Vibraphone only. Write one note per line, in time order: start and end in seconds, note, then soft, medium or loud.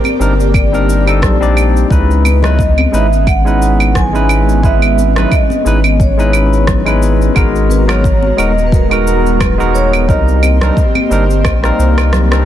0.00 0.57 A#4 medium
0.55 1.53 D5 medium
2.25 2.44 B4 medium
2.44 2.95 D#5 medium
2.94 3.25 E5 medium
3.28 3.97 F#5 loud
3.96 4.60 G#5 medium
4.64 5.34 E5 loud
5.33 6.02 D#5 medium
6.01 6.98 C#5 medium
7.70 7.79 B4 medium
7.89 8.40 C#5 loud
8.38 8.67 D#5 loud
8.67 8.73 B4 medium
8.72 9.42 A#4 medium
9.40 9.76 B4 medium
9.74 10.10 C#5 loud
10.09 12.09 D#5 loud